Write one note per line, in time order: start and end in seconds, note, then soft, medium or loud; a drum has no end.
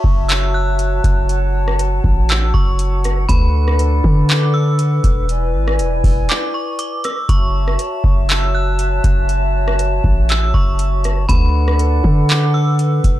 0.00 3.25 F#4 medium
0.00 3.25 C#5 medium
0.00 1.27 E5 medium
0.00 3.25 A5 medium
0.00 0.25 C#6 loud
0.04 1.00 F#1 loud
0.04 kick loud
0.29 0.53 E6 medium
0.29 clap loud
0.29 closed hi-hat medium
0.54 1.25 F#6 medium
0.79 closed hi-hat medium
1.04 2.00 F#1 loud
1.04 kick medium
1.04 closed hi-hat medium
1.29 5.25 F#5 medium
1.29 closed hi-hat medium
1.68 cross-stick medium
1.79 closed hi-hat medium
2.04 2.52 A1 loud
2.04 kick medium
2.29 2.53 E6 medium
2.29 clap loud
2.29 closed hi-hat medium
2.54 3.26 F#1 loud
2.54 3.25 C#6 medium
2.54 kick medium
2.79 closed hi-hat medium
3.04 cross-stick medium
3.04 closed hi-hat medium
3.29 4.01 D2 loud
3.29 5.27 D4 medium
3.29 5.27 A4 medium
3.29 7.04 B4 medium
3.29 4.25 B5 loud
3.29 kick loud
3.29 closed hi-hat medium
3.68 cross-stick medium
3.79 closed hi-hat medium
4.04 5.00 D3 loud
4.04 kick loud
4.29 4.53 D6 medium
4.29 clap loud
4.29 closed hi-hat medium
4.54 5.25 E6 medium
4.79 closed hi-hat medium
5.04 5.56 E1 loud
5.04 kick medium
5.04 closed hi-hat medium
5.29 7.05 E4 medium
5.29 7.06 D5 medium
5.29 7.00 G#5 medium
5.29 closed hi-hat medium
5.54 5.81 G#1 loud
5.68 cross-stick loud
5.79 6.03 E1 loud
5.79 closed hi-hat medium
6.04 6.28 E1 loud
6.04 kick medium
6.04 open hi-hat medium
6.29 6.53 D6 medium
6.29 clap loud
6.29 closed hi-hat medium
6.54 6.78 C#6 medium
6.79 7.03 D6 medium
6.79 closed hi-hat medium
7.04 7.28 E6 medium
7.04 cross-stick medium
7.04 closed hi-hat medium
7.29 7.77 F#1 loud
7.29 11.25 F#4 medium
7.29 11.25 C#5 medium
7.29 11.25 E5 medium
7.29 11.25 A5 medium
7.29 8.25 C#6 loud
7.29 kick loud
7.29 closed hi-hat medium
7.68 cross-stick medium
7.79 closed hi-hat medium
8.04 9.00 F#1 loud
8.04 kick loud
8.29 8.53 E6 medium
8.29 clap loud
8.29 closed hi-hat medium
8.55 9.25 F#6 medium
8.79 closed hi-hat medium
9.04 10.00 F#1 loud
9.04 kick medium
9.04 closed hi-hat medium
9.29 closed hi-hat medium
9.68 cross-stick loud
9.79 closed hi-hat medium
10.04 10.52 A1 loud
10.04 kick loud
10.29 10.53 E6 medium
10.29 clap loud
10.29 closed hi-hat medium
10.54 11.26 F#1 loud
10.54 11.25 C#6 medium
10.54 kick medium
10.79 closed hi-hat medium
11.04 cross-stick medium
11.04 closed hi-hat medium
11.29 12.01 D2 loud
11.29 13.20 D4 medium
11.29 13.20 A4 medium
11.29 13.20 B4 medium
11.29 13.20 F#5 medium
11.29 12.25 B5 loud
11.29 kick loud
11.29 closed hi-hat medium
11.68 cross-stick medium
11.79 closed hi-hat medium
12.04 13.00 D3 loud
12.04 kick medium
12.29 12.53 D6 medium
12.29 clap loud
12.29 closed hi-hat medium
12.54 13.20 E6 medium
12.79 closed hi-hat medium
13.04 13.20 E1 loud
13.04 kick loud
13.04 closed hi-hat medium